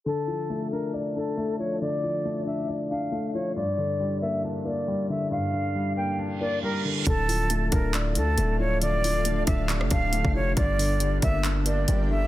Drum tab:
HH |----------------|----------------|----------------|----------------|
CP |----------------|----------------|----------------|----------------|
SD |----------------|----------------|----------------|----------------|
BD |----------------|----------------|----------------|----------------|

HH |x-o-x-x-x-x-x---|x-o-x-x-x-x-x---|x-o-x-x-x-x-x---|
CP |--------x-------|--------x-------|--------x-------|
SD |----------------|------r--r------|----------------|
BD |o-----o---------|------o---o--o--|o-----o---------|